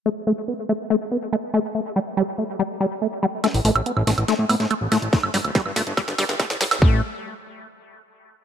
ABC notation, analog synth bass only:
X:1
M:4/4
L:1/16
Q:1/4=142
K:Gmix
V:1 name="Analog synth bass" clef=bass
z16 | z16 | z A,,, A,,, A,,, z A,,, A,,, A,,, z A,, A,, A,, z A,,, A,, A,,, | z G,,, G,,, D,,, z G,,, G,,, G,,, z G,,, G,,, G,,, z A,,, A,,, A,,, |
A,,,2 z12 z2 |]